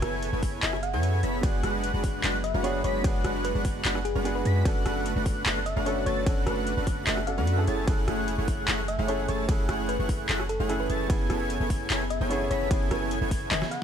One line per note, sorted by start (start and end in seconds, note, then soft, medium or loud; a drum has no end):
0.00 0.31 F#1 loud
0.00 1.40 C#3 medium
0.00 7.63 B3 medium
0.00 0.30 B3 medium
0.00 0.30 E4 medium
0.00 4.61 G#4 medium
0.00 0.30 A4 medium
0.00 0.14 B4 medium
0.00 0.30 C#5 medium
0.00 0.30 G#5 loud
0.00 0.30 G#6 loud
0.00 cross-stick medium
0.00 closed hi-hat medium
0.22 closed hi-hat medium
0.33 0.61 F#1 loud
0.33 0.60 B3 medium
0.33 0.60 E4 medium
0.33 0.60 A4 medium
0.33 0.60 C#5 medium
0.33 0.60 G#5 loud
0.33 0.60 G#6 loud
0.43 kick medium
0.43 open hi-hat loud
0.63 0.95 F#1 loud
0.63 0.76 B3 medium
0.63 0.76 E4 medium
0.63 0.76 A4 medium
0.63 0.76 C#5 medium
0.63 0.75 E5 medium
0.63 0.76 G#5 loud
0.63 0.76 G#6 loud
0.63 clap loud
0.63 closed hi-hat medium
0.63 ride soft
0.73 cross-stick medium
0.83 1.39 F#5 medium
0.83 closed hi-hat medium
0.93 1.21 F#2 loud
0.93 1.21 B3 medium
0.93 1.21 E4 medium
0.93 1.21 A4 medium
0.93 1.21 C#5 medium
0.93 1.21 G#5 medium
0.93 1.21 G#6 medium
1.03 closed hi-hat medium
1.23 1.41 F#1 medium
1.23 1.41 B3 medium
1.23 1.41 E4 medium
1.23 1.41 A4 medium
1.23 1.41 C#5 medium
1.23 1.41 B5 medium
1.23 1.41 B6 medium
1.23 closed hi-hat medium
1.41 1.61 F#1 loud
1.41 4.62 F#3 medium
1.41 1.61 G#3 loud
1.41 2.61 B3 medium
1.41 2.61 D4 medium
1.41 1.61 D4 medium
1.41 1.61 F#4 medium
1.41 2.62 F#4 medium
1.41 2.63 G#4 medium
1.41 1.61 B4 medium
1.41 1.61 F#5 loud
1.41 1.61 F#6 loud
1.41 kick loud
1.41 closed hi-hat medium
1.41 ride soft
1.63 1.92 F#1 medium
1.63 1.91 G#3 medium
1.63 1.91 D4 medium
1.63 1.91 F#4 medium
1.63 1.91 B4 medium
1.63 1.91 F#5 loud
1.63 1.91 F#6 loud
1.63 cross-stick medium
1.63 closed hi-hat medium
1.84 closed hi-hat medium
1.94 2.22 F#1 loud
1.94 2.21 G#3 medium
1.94 2.21 D4 medium
1.94 2.21 F#4 medium
1.94 2.21 B4 medium
1.94 2.21 F#5 loud
1.94 2.21 F#6 loud
2.04 kick medium
2.04 open hi-hat loud
2.24 2.52 F#1 loud
2.24 2.37 G#3 medium
2.24 2.37 D4 medium
2.24 2.37 F#4 medium
2.24 2.37 B4 medium
2.24 2.37 F#5 loud
2.24 2.37 F#6 loud
2.24 clap loud
2.24 closed hi-hat medium
2.24 ride soft
2.44 2.56 E5 medium
2.44 closed hi-hat medium
2.54 2.82 F#1 loud
2.54 2.82 G#3 medium
2.54 2.82 D4 medium
2.54 2.82 F#4 medium
2.54 2.82 B4 medium
2.54 2.82 F#5 medium
2.54 2.82 F#6 medium
2.63 3.01 B3 loud
2.63 3.02 D4 medium
2.63 3.02 F#4 medium
2.63 3.02 G#4 loud
2.63 2.76 C#5 medium
2.63 closed hi-hat medium
2.84 3.02 F#1 loud
2.84 3.02 G#3 medium
2.84 3.02 D4 medium
2.84 3.02 F#4 medium
2.84 3.02 B4 medium
2.84 3.15 C#5 loud
2.84 3.02 B5 medium
2.84 3.02 B6 medium
2.84 closed hi-hat medium
3.02 3.23 F#1 loud
3.02 3.22 G#3 medium
3.02 4.22 B3 medium
3.02 4.23 D4 medium
3.02 3.22 D4 medium
3.02 3.22 F#4 medium
3.02 4.23 F#4 medium
3.02 4.24 G#4 loud
3.02 3.22 B4 medium
3.02 3.22 F#5 loud
3.02 3.22 F#6 loud
3.02 kick loud
3.02 closed hi-hat medium
3.02 ride soft
3.24 3.53 F#1 loud
3.24 3.53 G#3 medium
3.24 3.52 D4 medium
3.24 3.52 F#4 medium
3.24 3.52 B4 medium
3.24 3.53 F#5 loud
3.24 3.52 F#6 loud
3.24 cross-stick medium
3.24 closed hi-hat medium
3.45 3.57 B4 medium
3.45 closed hi-hat medium
3.55 3.83 F#1 loud
3.55 3.83 G#3 medium
3.55 3.83 D4 medium
3.55 3.82 F#4 medium
3.55 3.82 B4 medium
3.55 3.82 F#5 loud
3.55 3.82 F#6 loud
3.65 kick medium
3.65 open hi-hat medium
3.85 4.13 F#1 loud
3.85 3.98 G#3 medium
3.85 3.98 D4 medium
3.85 3.98 F#4 medium
3.85 3.98 B4 medium
3.85 3.98 F#5 loud
3.85 3.98 F#6 loud
3.85 clap loud
3.85 closed hi-hat medium
3.85 ride soft
3.95 cross-stick medium
4.05 4.17 G#4 medium
4.05 closed hi-hat medium
4.15 4.43 F#1 loud
4.15 4.43 G#3 medium
4.15 4.43 D4 medium
4.15 4.43 F#4 medium
4.15 4.43 B4 medium
4.15 4.43 F#5 medium
4.15 4.43 F#6 medium
4.24 4.63 B3 loud
4.24 4.63 D4 medium
4.24 4.63 F#4 medium
4.24 4.33 G#4 medium
4.24 4.64 G#4 loud
4.24 closed hi-hat medium
4.35 4.70 B4 loud
4.45 4.63 F#2 loud
4.45 4.63 G#3 medium
4.45 4.63 D4 medium
4.45 4.63 F#4 medium
4.45 4.63 B4 medium
4.45 4.63 B5 loud
4.45 4.63 B6 medium
4.45 closed hi-hat medium
4.64 4.84 F#1 loud
4.64 7.64 D3 medium
4.64 4.83 A3 medium
4.64 5.83 C#4 medium
4.64 5.84 D4 medium
4.64 4.83 D4 medium
4.64 4.83 F#4 medium
4.64 5.84 F#4 medium
4.64 7.64 A4 medium
4.64 5.85 A4 loud
4.64 4.83 B4 medium
4.64 4.83 F#5 loud
4.64 4.83 F#6 loud
4.64 kick loud
4.64 closed hi-hat medium
4.64 ride medium
4.85 5.14 F#1 loud
4.85 5.14 A3 medium
4.85 5.14 D4 medium
4.85 5.14 F#4 medium
4.85 5.14 B4 medium
4.85 5.14 F#5 loud
4.85 5.14 F#6 loud
4.85 cross-stick medium
4.85 closed hi-hat medium
5.06 closed hi-hat medium
5.16 5.44 F#1 loud
5.16 5.44 A3 medium
5.16 5.44 D4 medium
5.16 5.44 F#4 medium
5.16 5.44 B4 medium
5.16 5.44 F#5 loud
5.16 5.44 F#6 loud
5.26 kick medium
5.26 open hi-hat medium
5.46 5.74 F#1 loud
5.46 5.59 A3 medium
5.46 5.59 D4 medium
5.46 5.59 F#4 medium
5.46 5.59 B4 medium
5.46 5.59 F#5 loud
5.46 5.59 F#6 loud
5.46 clap loud
5.46 closed hi-hat medium
5.46 ride soft
5.66 5.78 E5 medium
5.66 closed hi-hat medium
5.76 6.04 F#1 loud
5.76 6.04 A3 medium
5.76 6.04 D4 medium
5.76 6.04 F#4 medium
5.76 6.04 B4 medium
5.76 6.04 F#5 medium
5.76 6.04 F#6 medium
5.85 6.23 C#4 loud
5.85 6.24 D4 medium
5.85 6.24 F#4 medium
5.85 6.25 A4 loud
5.85 5.98 C#5 medium
5.85 closed hi-hat medium
6.06 6.25 F#1 loud
6.06 6.24 A3 medium
6.06 6.24 D4 medium
6.06 6.24 F#4 medium
6.06 6.24 B4 medium
6.06 6.37 C#5 loud
6.06 6.24 A5 loud
6.06 6.24 A6 medium
6.06 closed hi-hat medium
6.25 6.45 F#1 loud
6.25 6.44 A3 medium
6.25 7.24 C#4 medium
6.25 7.25 D4 medium
6.25 6.44 D4 medium
6.25 6.44 F#4 medium
6.25 7.26 F#4 medium
6.25 7.26 A4 loud
6.25 6.44 B4 medium
6.25 6.44 F#5 loud
6.25 6.44 F#6 loud
6.25 kick loud
6.25 closed hi-hat medium
6.25 ride medium
6.46 6.75 F#1 loud
6.46 6.75 A3 medium
6.46 6.75 D4 medium
6.46 6.75 F#4 medium
6.46 6.59 B4 medium
6.46 6.75 B4 medium
6.46 6.75 F#5 loud
6.46 6.75 F#6 loud
6.46 cross-stick medium
6.46 closed hi-hat medium
6.67 closed hi-hat medium
6.77 7.05 F#1 loud
6.77 7.05 A3 medium
6.77 7.05 D4 medium
6.77 7.05 F#4 medium
6.77 7.05 B4 medium
6.77 7.05 F#5 loud
6.77 7.05 F#6 loud
6.87 kick medium
6.87 open hi-hat medium
7.07 7.39 F#1 loud
7.07 7.20 A3 medium
7.07 7.20 D4 medium
7.07 7.20 F#4 medium
7.07 7.20 B4 medium
7.07 7.19 E5 medium
7.07 7.20 F#5 loud
7.07 7.20 F#6 loud
7.07 clap loud
7.07 closed hi-hat medium
7.07 ride soft
7.17 cross-stick medium
7.26 7.55 C#4 medium
7.26 7.55 D4 medium
7.26 7.55 F#4 medium
7.26 7.56 A4 medium
7.26 7.72 F#5 medium
7.26 closed hi-hat medium
7.37 7.66 F#2 loud
7.37 7.65 A3 medium
7.37 7.65 D4 medium
7.37 7.65 F#4 medium
7.37 7.65 B4 medium
7.37 7.65 F#5 medium
7.37 7.65 F#6 medium
7.47 closed hi-hat medium
7.57 7.84 C#4 medium
7.57 7.85 E4 medium
7.57 7.85 G#4 medium
7.57 7.86 A4 loud
7.67 7.86 F#1 medium
7.67 11.06 E3 medium
7.67 7.85 A3 medium
7.67 11.06 A3 medium
7.67 7.85 E4 medium
7.67 7.85 G#4 medium
7.67 7.85 C#5 medium
7.67 11.06 G#5 medium
7.67 7.85 A5 medium
7.67 7.85 A6 medium
7.67 closed hi-hat medium
7.86 8.06 F#1 loud
7.86 8.05 A3 medium
7.86 9.05 C#4 medium
7.86 9.06 E4 medium
7.86 8.05 E4 medium
7.86 8.05 G#4 medium
7.86 9.06 G#4 medium
7.86 8.05 C#5 medium
7.86 8.05 F#5 loud
7.86 8.05 F#6 loud
7.86 kick loud
7.86 closed hi-hat medium
7.86 ride medium
7.90 9.07 A4 loud
8.08 8.36 F#1 loud
8.08 8.36 A3 medium
8.08 8.36 E4 medium
8.08 8.36 G#4 medium
8.08 8.36 C#5 medium
8.08 8.36 F#5 loud
8.08 8.36 F#6 loud
8.08 cross-stick medium
8.08 closed hi-hat medium
8.28 closed hi-hat medium
8.38 8.66 F#1 loud
8.38 8.66 A3 medium
8.38 8.66 E4 medium
8.38 8.66 G#4 medium
8.38 8.66 C#5 medium
8.38 8.66 F#5 loud
8.38 8.66 F#6 loud
8.48 kick medium
8.48 open hi-hat loud
8.68 8.97 F#1 loud
8.68 8.81 A3 medium
8.68 8.81 E4 medium
8.68 8.81 G#4 medium
8.68 8.81 C#5 medium
8.68 8.81 F#5 loud
8.68 8.81 F#6 loud
8.68 clap loud
8.68 closed hi-hat medium
8.68 ride soft
8.88 9.00 E5 medium
8.88 closed hi-hat medium
8.99 9.27 F#1 loud
8.99 9.26 A3 medium
8.99 9.26 E4 medium
8.99 9.26 G#4 medium
8.99 9.26 C#5 medium
8.99 9.26 F#5 medium
8.99 9.26 F#6 medium
9.07 9.45 C#4 medium
9.07 9.46 E4 medium
9.07 9.46 G#4 medium
9.07 9.47 A4 loud
9.07 9.20 C#5 medium
9.07 closed hi-hat medium
9.28 9.47 F#1 loud
9.28 9.46 A3 medium
9.28 9.46 E4 medium
9.28 9.46 G#4 medium
9.28 9.46 C#5 medium
9.28 9.59 C#5 loud
9.28 9.46 A5 medium
9.28 9.46 A6 medium
9.28 closed hi-hat medium
9.47 9.67 F#1 loud
9.47 9.66 A3 medium
9.47 10.66 C#4 medium
9.47 10.67 E4 medium
9.47 9.66 E4 medium
9.47 9.66 G#4 medium
9.47 10.68 G#4 medium
9.47 10.68 A4 loud
9.47 9.66 C#5 medium
9.47 9.66 F#5 loud
9.47 9.66 F#6 loud
9.47 kick loud
9.47 closed hi-hat medium
9.47 ride medium
9.69 9.97 F#1 loud
9.69 9.97 A3 medium
9.69 9.97 E4 medium
9.69 9.97 G#4 medium
9.69 9.97 C#5 medium
9.69 9.97 F#5 loud
9.69 9.97 F#6 loud
9.69 cross-stick medium
9.69 closed hi-hat medium
9.89 10.01 B4 loud
9.89 closed hi-hat medium
9.99 10.27 F#1 loud
9.99 10.27 A3 medium
9.99 10.27 E4 medium
9.99 10.27 G#4 medium
9.99 10.27 C#5 medium
9.99 10.27 F#5 loud
9.99 10.27 F#6 loud
10.09 kick medium
10.09 open hi-hat loud
10.29 10.58 F#1 loud
10.29 10.43 A3 loud
10.29 10.43 E4 medium
10.29 10.43 G#4 medium
10.29 10.43 C#5 medium
10.29 10.43 F#5 loud
10.29 10.43 F#6 loud
10.29 clap loud
10.29 closed hi-hat medium
10.29 ride soft
10.40 cross-stick medium
10.49 10.61 A4 medium
10.49 closed hi-hat medium
10.60 10.88 F#1 loud
10.60 10.87 A3 medium
10.60 10.87 E4 medium
10.60 10.87 G#4 medium
10.60 10.87 C#5 medium
10.60 10.87 F#5 medium
10.60 10.87 F#6 medium
10.68 11.07 C#4 loud
10.68 11.07 E4 medium
10.68 11.08 G#4 medium
10.68 10.78 A4 medium
10.68 11.08 A4 loud
10.68 closed hi-hat medium
10.80 11.14 B4 medium
10.90 11.08 F#1 loud
10.90 11.07 A3 medium
10.90 11.07 E4 medium
10.90 11.07 G#4 medium
10.90 11.07 C#5 medium
10.90 11.07 A5 loud
10.90 11.07 A6 loud
10.90 closed hi-hat medium
11.08 11.28 F#1 loud
11.08 13.84 C#3 medium
11.08 12.27 B3 medium
11.08 11.28 B3 medium
11.08 13.84 B3 medium
11.08 12.28 C#4 medium
11.08 11.28 E4 medium
11.08 12.29 E4 medium
11.08 13.84 G#4 medium
11.08 11.28 A4 medium
11.08 11.28 C#5 medium
11.08 11.28 G#5 loud
11.08 11.28 G#6 loud
11.08 kick loud
11.08 closed hi-hat medium
11.08 ride soft
11.12 12.29 G#4 loud
11.30 11.58 F#1 loud
11.30 11.58 B3 medium
11.30 11.58 E4 medium
11.30 11.58 A4 medium
11.30 11.58 C#5 medium
11.30 11.58 G#5 loud
11.30 11.58 G#6 loud
11.30 cross-stick medium
11.30 closed hi-hat medium
11.50 closed hi-hat medium
11.60 11.88 F#1 loud
11.60 11.88 B3 medium
11.60 11.88 E4 medium
11.60 11.88 A4 medium
11.60 11.88 C#5 medium
11.60 11.88 G#5 loud
11.60 11.88 G#6 loud
11.70 kick medium
11.70 open hi-hat loud
11.90 12.19 F#1 loud
11.90 12.04 B3 medium
11.90 12.04 E4 medium
11.90 12.04 A4 medium
11.90 12.04 C#5 medium
11.90 12.04 G#5 loud
11.90 12.04 G#6 loud
11.90 clap loud
11.90 closed hi-hat medium
11.90 ride soft
12.10 12.23 E5 medium
12.10 closed hi-hat medium
12.21 12.49 F#1 loud
12.21 12.48 B3 medium
12.21 12.48 E4 medium
12.21 12.48 A4 medium
12.21 12.48 C#5 medium
12.21 12.48 G#5 medium
12.21 12.48 G#6 medium
12.29 12.67 B3 loud
12.29 12.68 C#4 medium
12.29 12.69 E4 medium
12.29 12.69 G#4 loud
12.29 12.43 C#5 medium
12.29 closed hi-hat medium
12.51 12.69 F#1 loud
12.51 12.68 B3 medium
12.51 12.68 E4 medium
12.51 12.68 A4 medium
12.51 12.81 C#5 loud
12.51 12.68 C#5 medium
12.51 12.68 B5 loud
12.51 12.68 B6 medium
12.51 closed hi-hat medium
12.69 12.89 F#1 loud
12.69 13.84 B3 medium
12.69 12.89 B3 loud
12.69 13.84 C#4 medium
12.69 12.89 E4 medium
12.69 13.84 E4 medium
12.69 12.89 A4 medium
12.69 12.89 C#5 medium
12.69 12.89 G#5 loud
12.69 12.89 G#6 loud
12.69 kick loud
12.69 closed hi-hat medium
12.69 ride soft
12.73 13.84 G#4 loud
12.91 13.19 F#1 loud
12.91 13.19 B3 medium
12.91 13.19 E4 medium
12.91 13.19 A4 medium
12.91 13.03 B4 medium
12.91 13.19 C#5 medium
12.91 13.19 G#5 loud
12.91 13.19 G#6 loud
12.91 cross-stick medium
12.91 closed hi-hat medium
13.11 closed hi-hat medium
13.21 13.49 F#1 loud
13.21 13.49 B3 medium
13.21 13.49 E4 medium
13.21 13.49 A4 medium
13.21 13.49 C#5 medium
13.21 13.49 G#5 loud
13.21 13.49 G#6 loud
13.31 kick medium
13.31 open hi-hat loud
13.51 13.63 F#1 loud
13.51 13.65 B3 medium
13.51 13.65 E4 medium
13.51 13.65 A4 medium
13.51 13.65 C#5 medium
13.51 13.63 E5 medium
13.51 13.65 G#5 loud
13.51 13.65 G#6 loud
13.51 clap loud
13.51 closed hi-hat medium
13.51 high tom medium
13.51 ride soft
13.62 cross-stick medium
13.62 snare medium
13.71 13.84 F#5 medium
13.71 closed hi-hat medium